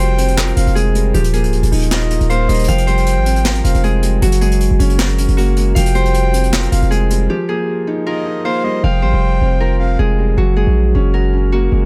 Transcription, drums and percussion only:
0.18 closed hi-hat medium
0.28 closed hi-hat medium
0.37 snare loud
0.37 clap medium
0.47 closed hi-hat soft
0.57 closed hi-hat medium
0.67 closed hi-hat medium
0.76 closed hi-hat medium
0.95 closed hi-hat medium
1.14 closed hi-hat medium
1.24 closed hi-hat medium
1.33 closed hi-hat medium
1.44 closed hi-hat medium
1.53 closed hi-hat soft
1.63 closed hi-hat medium
1.72 open hi-hat medium
1.82 closed hi-hat medium
1.91 snare loud
1.91 clap medium
2.01 closed hi-hat soft
2.10 closed hi-hat medium
2.20 closed hi-hat medium
2.30 closed hi-hat medium
2.49 closed hi-hat medium
2.54 closed hi-hat medium
2.59 closed hi-hat medium
2.63 closed hi-hat medium
2.68 closed hi-hat medium
2.78 closed hi-hat medium
2.87 closed hi-hat medium
2.97 closed hi-hat medium
3.06 closed hi-hat medium
3.26 closed hi-hat medium
3.36 closed hi-hat medium
3.45 snare loud
3.45 clap medium
3.55 closed hi-hat soft
3.64 closed hi-hat medium
3.74 closed hi-hat medium
3.83 closed hi-hat medium
4.02 closed hi-hat medium
4.22 closed hi-hat medium
4.32 closed hi-hat medium
4.41 closed hi-hat medium
4.51 closed hi-hat medium
4.60 closed hi-hat medium
4.80 closed hi-hat medium
4.90 closed hi-hat medium
4.99 snare loud
4.99 clap medium
5.09 closed hi-hat soft
5.18 closed hi-hat medium
5.28 closed hi-hat medium
5.37 closed hi-hat medium
5.56 closed hi-hat medium
5.76 closed hi-hat medium
5.86 closed hi-hat medium
5.95 closed hi-hat medium
6.05 closed hi-hat medium
6.14 closed hi-hat medium
6.34 closed hi-hat medium
6.43 closed hi-hat medium
6.53 snare loud
6.53 clap medium
6.62 closed hi-hat soft
6.72 closed hi-hat medium
6.82 closed hi-hat medium
6.91 closed hi-hat medium
7.10 closed hi-hat medium

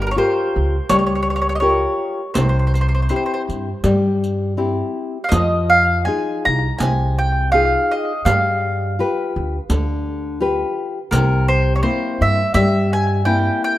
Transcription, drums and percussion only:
0.89 riq medium
2.35 riq medium
2.75 riq soft
3.09 riq soft
3.50 riq soft
3.84 riq medium
4.24 riq soft
5.32 riq medium
6.80 riq medium
8.26 riq medium
9.70 riq medium
11.12 riq medium
12.54 riq medium

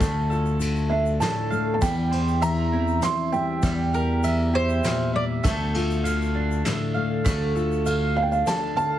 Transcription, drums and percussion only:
0.00 kick medium
0.00 ride medium
0.00 shaker medium
0.31 shaker soft
0.46 shaker soft
0.61 ride medium
0.61 shaker medium
0.76 shaker soft
1.06 shaker soft
1.21 snare medium
1.21 ride soft
1.21 shaker medium
1.52 shaker soft
1.82 kick loud
1.82 ride medium
1.82 shaker medium
2.12 ride medium
2.12 shaker soft
2.28 shaker soft
2.42 ride medium
2.42 shaker medium
2.88 shaker soft
3.02 snare medium
3.02 ride soft
3.02 shaker medium
3.33 shaker soft
3.62 kick loud
3.62 ride medium
3.62 shaker medium
3.94 shaker soft
4.24 ride medium
4.24 shaker medium
4.69 shaker soft
4.84 snare medium
4.84 ride soft
4.84 shaker medium
5.44 kick loud
5.44 ride medium
5.44 shaker medium
5.74 ride medium
5.74 shaker soft
5.90 shaker soft
6.05 ride medium
6.05 shaker medium
6.22 shaker soft
6.51 shaker soft
6.65 snare medium
6.65 ride soft
6.65 shaker medium
7.26 kick medium
7.26 ride medium
7.26 shaker loud
7.56 shaker soft
7.72 shaker soft
7.86 ride medium
7.86 shaker loud
8.32 shaker soft
8.47 snare medium
8.47 ride soft
8.47 shaker medium
8.78 shaker soft

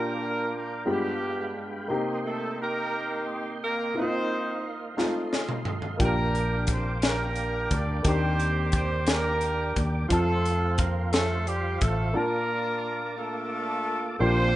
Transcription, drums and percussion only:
4.98 snare soft
5.33 snare medium
5.49 mid tom medium
5.65 floor tom medium
5.82 floor tom medium
6.00 kick medium
6.00 closed hi-hat medium
6.35 closed hi-hat soft
6.67 kick medium
6.67 closed hi-hat medium
7.02 snare loud
7.02 closed hi-hat medium
7.36 closed hi-hat soft
7.71 kick medium
7.71 closed hi-hat soft
8.04 kick medium
8.04 closed hi-hat medium
8.40 closed hi-hat soft
8.72 kick medium
8.72 closed hi-hat medium
9.07 snare loud
9.07 closed hi-hat medium
9.41 closed hi-hat soft
9.76 kick medium
9.76 closed hi-hat soft
10.10 kick medium
10.10 closed hi-hat medium
10.45 closed hi-hat soft
10.78 kick medium
10.78 closed hi-hat medium
11.13 snare loud
11.13 closed hi-hat medium
11.47 closed hi-hat soft
11.81 kick medium
11.81 closed hi-hat medium

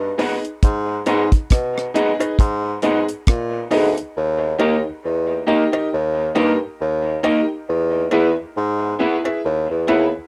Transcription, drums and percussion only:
0.19 open hi-hat medium
0.19 cowbell medium
0.45 closed hi-hat medium
0.63 kick loud
0.63 closed hi-hat loud
1.06 closed hi-hat medium
1.06 cowbell medium
1.32 kick medium
1.32 closed hi-hat medium
1.50 kick loud
1.50 cross-stick loud
1.50 closed hi-hat medium
1.78 cross-stick medium
1.96 closed hi-hat medium
2.20 closed hi-hat medium
2.20 cowbell medium
2.39 kick loud
2.39 closed hi-hat medium
2.82 closed hi-hat medium
2.82 cowbell medium
3.08 closed hi-hat medium
3.27 kick loud
3.27 cross-stick loud
3.27 closed hi-hat medium
3.71 open hi-hat medium
3.71 cowbell medium
3.98 closed hi-hat medium
4.60 cowbell medium
5.73 cowbell medium
6.36 cowbell medium
7.24 cowbell medium
8.11 cowbell medium
9.25 cowbell medium
9.88 cowbell medium

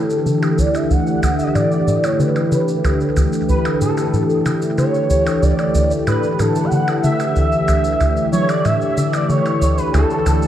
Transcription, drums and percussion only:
0.10 shaker soft
0.26 shaker soft
0.43 percussion blips medium
0.43 shaker soft
0.58 shaker medium
0.75 percussion blips soft
0.75 shaker soft
0.91 shaker soft
1.07 shaker soft
1.23 percussion blips medium
1.23 shaker medium
1.39 shaker soft
1.55 percussion blips soft
1.55 shaker soft
1.72 shaker soft
1.88 shaker medium
2.04 percussion blips medium
2.04 shaker soft
2.20 shaker medium
2.36 percussion blips soft
2.36 shaker soft
2.52 shaker medium
2.68 shaker soft
2.85 percussion blips medium
2.85 shaker soft
3.01 shaker soft
3.17 percussion blips soft
3.17 shaker medium
3.33 shaker medium
3.49 shaker medium
3.65 percussion blips medium
3.65 shaker soft
3.81 shaker medium
3.97 percussion blips soft
3.97 shaker medium
4.14 shaker medium
4.30 shaker soft
4.46 percussion blips medium
4.46 shaker medium
4.62 shaker medium
4.78 percussion blips soft
4.78 shaker medium
4.94 shaker soft
5.10 shaker medium
5.27 percussion blips medium
5.27 shaker soft
5.43 shaker soft
5.59 percussion blips soft
5.59 shaker soft
5.75 shaker medium
5.91 shaker medium
6.07 percussion blips medium
6.07 shaker medium
6.23 shaker soft
6.39 percussion blips soft
6.39 shaker medium
6.56 shaker medium
6.72 shaker medium
6.88 percussion blips medium
6.88 shaker soft
7.04 shaker medium
7.20 percussion blips soft
7.20 shaker soft
7.36 shaker medium
7.52 shaker soft
7.68 percussion blips medium
7.68 shaker medium
7.84 shaker soft
8.01 percussion blips soft
8.01 shaker soft
8.17 shaker soft
8.33 shaker medium
8.49 percussion blips medium
8.49 shaker soft
8.65 percussion blips soft
8.65 shaker soft
8.81 shaker soft
8.97 shaker medium
9.13 percussion blips medium
9.13 shaker soft
9.30 shaker medium
9.46 percussion blips soft
9.46 shaker soft
9.62 shaker medium
9.78 shaker soft
9.94 percussion blips medium
9.94 shaker medium
10.10 shaker soft
10.26 percussion blips soft
10.26 shaker medium
10.42 shaker soft

